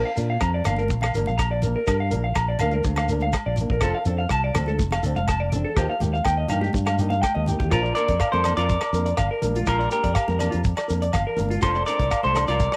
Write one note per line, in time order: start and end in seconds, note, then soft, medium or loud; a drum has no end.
0.05 0.14 F5 medium
0.16 0.36 A#2 medium
0.16 0.33 A#3 soft
0.16 0.32 D4 medium
0.16 0.31 A#4 medium
0.16 closed hi-hat soft
0.16 shekere medium
0.30 0.38 F5 medium
0.41 0.60 F2 loud
0.41 0.50 A#5 medium
0.41 kick medium
0.41 cross-stick medium
0.41 low agogo medium
0.41 shekere medium
0.54 0.63 D5 medium
0.64 0.91 G1 medium
0.64 0.81 D4 medium
0.64 0.75 F5 medium
0.64 muted nylon-string guitar stroke medium
0.64 cross-stick medium
0.64 closed hi-hat medium
0.64 low conga medium
0.64 low agogo medium
0.64 shekere medium
0.69 0.82 A#3 soft
0.76 0.87 A#4 medium
0.76 high conga medium
0.76 shekere soft
0.88 1.09 A#1 medium
0.88 kick medium
0.88 high conga medium
0.88 shekere medium
1.01 1.11 F5 medium
1.01 cross-stick medium
1.01 low conga medium
1.01 low agogo medium
1.14 1.25 G1 medium
1.14 1.31 A#3 soft
1.14 1.30 D4 medium
1.14 1.29 A#4 medium
1.14 closed hi-hat medium
1.14 shekere medium
1.26 1.75 A#1 medium
1.26 1.36 F5 medium
1.26 high conga medium
1.26 shekere soft
1.38 1.47 A#5 medium
1.38 kick medium
1.38 cross-stick medium
1.38 low agogo medium
1.38 shekere medium
1.51 1.60 D5 medium
1.62 1.79 A#3 soft
1.62 1.79 D4 medium
1.62 1.78 A#4 medium
1.62 closed hi-hat soft
1.62 low conga medium
1.62 shekere medium
1.76 1.84 A#4 medium
1.87 2.15 G2 medium
1.87 1.96 A#4 medium
1.87 kick medium
1.87 cross-stick medium
1.87 low agogo medium
1.87 shekere medium
2.00 2.09 F5 medium
2.11 2.32 A#1 medium
2.11 2.27 A#3 soft
2.11 2.27 D4 medium
2.11 2.26 A#4 medium
2.11 closed hi-hat medium
2.11 shekere medium
2.24 2.33 F5 medium
2.35 2.55 A#1 medium
2.35 2.45 A#5 medium
2.35 kick medium
2.35 cross-stick medium
2.35 low agogo medium
2.35 shekere medium
2.48 2.57 D5 medium
2.59 2.80 D2 medium
2.59 2.76 D4 medium
2.59 2.75 A#4 medium
2.59 2.70 F5 medium
2.59 closed hi-hat medium
2.59 low conga medium
2.59 low agogo medium
2.59 shekere medium
2.64 2.77 A#3 soft
2.71 2.82 A#4 medium
2.71 high conga medium
2.71 shekere soft
2.83 3.32 D2 medium
2.83 kick medium
2.83 high conga medium
2.83 shekere medium
2.96 3.06 F5 medium
2.96 cross-stick medium
2.96 low conga medium
2.96 low agogo medium
3.09 3.25 D4 medium
3.09 3.24 A#4 medium
3.09 closed hi-hat soft
3.09 shekere medium
3.13 3.26 A#3 soft
3.20 3.31 F5 medium
3.20 high conga medium
3.20 shekere soft
3.33 muted clean electric guitar stroke medium
3.33 kick medium
3.33 cross-stick medium
3.33 low agogo medium
3.33 shekere medium
3.46 3.65 A#1 medium
3.46 3.55 D5 medium
3.56 closed hi-hat soft
3.56 low conga medium
3.56 shekere medium
3.61 3.74 A#3 soft
3.61 3.74 D4 medium
3.70 3.80 A#1 medium
3.70 3.80 A#4 medium
3.70 kick medium
3.81 3.92 F1 loud
3.81 3.97 F3 medium
3.81 3.97 C4 medium
3.81 3.98 D4 medium
3.81 3.91 A4 medium
3.81 3.98 A4 medium
3.81 kick medium
3.81 cross-stick medium
3.81 low agogo medium
3.81 shekere medium
3.95 4.03 F5 medium
4.05 4.25 F2 medium
4.05 4.22 D4 medium
4.05 4.21 A4 medium
4.05 closed hi-hat soft
4.05 shekere medium
4.10 4.23 C4 soft
4.19 4.27 F5 medium
4.29 4.50 C2 loud
4.29 4.40 A5 medium
4.29 kick medium
4.29 cross-stick medium
4.29 low agogo medium
4.29 shekere medium
4.44 4.52 D5 medium
4.54 4.81 D2 medium
4.54 4.71 C4 medium
4.54 4.71 D4 medium
4.54 4.70 A4 medium
4.54 cross-stick medium
4.54 closed hi-hat soft
4.54 low conga medium
4.54 low agogo medium
4.54 shekere medium
4.66 4.76 A4 medium
4.66 high conga medium
4.66 shekere soft
4.79 4.98 F1 medium
4.79 kick medium
4.79 high conga medium
4.79 shekere medium
4.91 5.01 F5 medium
4.91 cross-stick medium
4.91 low conga medium
4.91 low agogo medium
5.03 5.13 D2 medium
5.03 5.20 C4 medium
5.03 5.19 D4 medium
5.03 5.18 A4 medium
5.03 closed hi-hat medium
5.03 shekere medium
5.16 5.63 F1 medium
5.16 5.25 F5 medium
5.16 high conga medium
5.16 shekere soft
5.28 5.37 A5 medium
5.28 kick medium
5.28 cross-stick medium
5.28 low agogo medium
5.28 shekere medium
5.40 5.49 D5 medium
5.52 5.69 C4 soft
5.52 5.68 D4 medium
5.52 5.67 A4 medium
5.52 closed hi-hat soft
5.52 low conga medium
5.52 shekere loud
5.64 5.73 A4 medium
5.77 5.86 D#2 medium
5.77 5.92 F3 medium
5.77 5.92 A#3 medium
5.77 5.93 D#4 medium
5.77 5.86 G4 medium
5.77 5.93 G4 medium
5.77 kick medium
5.77 cross-stick medium
5.77 low agogo medium
5.77 shekere medium
5.90 5.98 F5 medium
6.00 6.20 D#2 medium
6.00 6.17 A#3 soft
6.00 6.17 D#4 soft
6.00 6.16 G4 medium
6.00 closed hi-hat medium
6.00 high conga medium
6.00 shekere medium
6.14 6.22 F5 medium
6.14 shekere soft
6.25 6.44 D#2 medium
6.25 6.34 G5 medium
6.25 kick medium
6.25 cross-stick medium
6.25 low agogo medium
6.25 shekere medium
6.37 6.46 D#5 medium
6.48 6.69 G2 medium
6.48 6.66 A#3 soft
6.48 6.65 D#4 medium
6.48 6.64 G4 medium
6.48 6.59 F5 medium
6.48 closed hi-hat soft
6.48 low conga medium
6.48 low agogo medium
6.48 shekere medium
6.61 6.70 G4 medium
6.61 high conga medium
6.61 shekere soft
6.73 7.22 G2 medium
6.73 kick medium
6.73 high conga medium
6.73 shekere medium
6.86 6.95 F5 medium
6.86 cross-stick medium
6.86 high conga medium
6.86 low agogo medium
6.98 7.15 A#3 medium
6.98 7.14 D#4 medium
6.98 7.14 G4 medium
6.98 closed hi-hat soft
6.98 shekere medium
7.10 7.19 F5 medium
7.10 high conga medium
7.10 shekere soft
7.22 7.31 G5 medium
7.22 kick medium
7.22 cross-stick medium
7.22 high conga medium
7.22 low agogo medium
7.22 shekere medium
7.35 7.55 D#2 medium
7.35 7.43 D#5 medium
7.35 high conga medium
7.46 7.63 D#4 medium
7.46 7.63 G4 medium
7.46 closed hi-hat soft
7.46 low conga medium
7.46 shekere medium
7.51 7.64 A#3 medium
7.59 7.69 D#2 medium
7.59 7.68 G4 medium
7.59 kick medium
7.59 low conga medium
7.59 shekere soft
7.70 7.91 A#1 medium
7.70 7.86 F3 medium
7.70 7.87 A#3 medium
7.70 7.87 D4 medium
7.70 7.80 F4 medium
7.70 7.95 F4 medium
7.70 7.95 A#4 medium
7.70 muted nylon-string guitar stroke medium
7.70 kick medium
7.70 cross-stick medium
7.70 closed hi-hat soft
7.70 low agogo medium
7.70 shekere medium
7.83 7.92 D5 medium
7.83 shekere soft
7.95 8.12 D4 soft
7.95 8.30 A#4 medium
7.95 8.11 A#4 medium
7.95 8.32 D5 medium
7.95 closed hi-hat soft
7.95 shekere medium
7.99 8.13 A#3 soft
8.08 8.18 F2 medium
8.08 8.17 D5 medium
8.08 kick medium
8.08 closed hi-hat soft
8.08 shekere soft
8.20 8.29 F5 medium
8.20 kick medium
8.20 cross-stick medium
8.20 closed hi-hat soft
8.20 low agogo medium
8.20 shekere medium
8.32 8.52 F2 medium
8.32 8.56 A4 medium
8.32 8.41 A#4 medium
8.32 8.55 C5 medium
8.32 high conga medium
8.32 shekere soft
8.44 8.61 D4 soft
8.44 8.60 A#4 medium
8.44 8.54 D5 medium
8.44 cross-stick medium
8.44 closed hi-hat soft
8.44 low conga medium
8.44 low agogo medium
8.44 shekere medium
8.48 8.62 A#3 soft
8.57 8.76 F2 medium
8.57 8.66 F4 medium
8.57 9.64 A#4 medium
8.57 9.68 D5 medium
8.57 closed hi-hat soft
8.57 shekere soft
8.69 kick medium
8.69 closed hi-hat soft
8.69 shekere medium
8.81 8.90 D5 medium
8.81 cross-stick medium
8.81 low agogo medium
8.81 shekere soft
8.93 9.12 F2 medium
8.93 9.10 A#3 soft
8.93 9.10 D4 soft
8.93 9.09 A#4 medium
8.93 closed hi-hat soft
8.93 shekere medium
9.06 9.15 D5 medium
9.06 closed hi-hat soft
9.06 shekere soft
9.17 9.28 G1 medium
9.17 9.27 F5 medium
9.17 kick medium
9.17 cross-stick medium
9.17 closed hi-hat medium
9.17 low conga medium
9.17 low agogo medium
9.17 shekere medium
9.31 9.40 A#4 medium
9.42 9.62 A#1 medium
9.42 9.59 A#3 soft
9.42 9.58 D4 medium
9.42 9.57 A#4 medium
9.42 closed hi-hat soft
9.42 high conga medium
9.42 low conga medium
9.42 shekere medium
9.55 9.65 F4 medium
9.55 closed hi-hat soft
9.55 high conga medium
9.66 9.87 A#1 medium
9.66 9.76 F4 medium
9.66 9.90 F4 medium
9.66 9.92 A#4 medium
9.66 kick medium
9.66 cross-stick medium
9.66 closed hi-hat soft
9.66 low agogo medium
9.66 shekere medium
9.79 9.88 D5 medium
9.79 shekere soft
9.91 10.07 A#3 soft
9.91 10.07 D4 soft
9.91 10.61 G4 medium
9.91 10.06 A#4 medium
9.91 10.62 A#4 medium
9.91 closed hi-hat soft
9.91 shekere medium
10.04 10.14 F2 medium
10.04 10.12 D5 medium
10.04 kick medium
10.04 closed hi-hat soft
10.04 shekere soft
10.15 10.24 F5 medium
10.15 kick medium
10.15 cross-stick medium
10.15 closed hi-hat soft
10.15 low agogo medium
10.15 shekere medium
10.28 10.47 F2 medium
10.28 10.37 A#4 medium
10.28 high conga medium
10.28 shekere soft
10.39 10.56 A#3 soft
10.39 10.56 D4 soft
10.39 10.55 A#4 soft
10.39 10.49 D5 medium
10.39 closed hi-hat soft
10.39 low conga medium
10.39 low agogo medium
10.39 shekere medium
10.51 10.73 F2 medium
10.51 10.60 F4 medium
10.51 closed hi-hat soft
10.51 shekere soft
10.64 kick medium
10.64 closed hi-hat soft
10.64 shekere medium
10.77 10.86 D5 medium
10.77 cross-stick medium
10.77 low agogo medium
10.77 shekere soft
10.88 11.09 F2 medium
10.88 11.05 A#3 soft
10.88 11.05 D4 medium
10.88 11.04 A#4 medium
10.88 closed hi-hat soft
10.88 shekere medium
11.02 11.11 D5 medium
11.02 closed hi-hat soft
11.02 shekere soft
11.13 11.24 G1 medium
11.13 11.23 F5 medium
11.13 kick medium
11.13 cross-stick medium
11.13 closed hi-hat soft
11.13 low conga medium
11.13 low agogo medium
11.13 shekere loud
11.27 11.35 A#4 medium
11.36 11.58 G1 medium
11.36 11.54 A#3 soft
11.36 11.53 D4 medium
11.36 11.52 A#4 medium
11.36 closed hi-hat soft
11.36 high conga medium
11.36 low conga medium
11.36 shekere medium
11.49 11.59 F4 medium
11.49 closed hi-hat soft
11.49 high conga medium
11.62 11.82 F1 medium
11.62 11.77 F3 medium
11.62 11.78 C4 medium
11.62 11.78 D4 medium
11.62 11.71 F4 medium
11.62 11.86 A4 medium
11.62 11.86 C5 loud
11.62 muted nylon-string guitar stroke medium
11.62 kick medium
11.62 cross-stick medium
11.62 closed hi-hat soft
11.62 low agogo medium
11.62 shekere loud
11.75 11.84 D5 medium
11.75 shekere soft
11.86 12.03 C4 soft
11.86 12.03 D4 soft
11.86 12.02 A4 soft
11.86 12.22 A#4 medium
11.86 12.24 D5 medium
11.86 closed hi-hat soft
11.86 shekere medium
11.99 12.09 C2 medium
11.99 12.08 D5 medium
11.99 kick medium
11.99 closed hi-hat soft
11.99 shekere soft
12.11 12.20 F5 medium
12.11 kick medium
12.11 cross-stick medium
12.11 closed hi-hat soft
12.11 low agogo medium
12.11 shekere medium
12.23 12.44 C2 medium
12.23 12.32 A4 medium
12.23 12.48 A4 medium
12.23 12.48 C5 medium
12.23 high conga medium
12.23 shekere soft
12.35 12.52 C4 soft
12.35 12.51 D4 soft
12.35 12.50 A4 soft
12.35 12.45 D5 medium
12.35 cross-stick medium
12.35 closed hi-hat soft
12.35 low conga medium
12.35 low agogo medium
12.35 shekere medium
12.47 12.68 C2 medium
12.47 12.57 F4 medium
12.47 12.77 A#4 medium
12.47 12.77 D5 medium
12.47 closed hi-hat soft
12.47 shekere soft
12.60 kick medium
12.60 closed hi-hat soft
12.60 shekere medium
12.72 12.77 D5 medium
12.72 cross-stick medium
12.72 shekere soft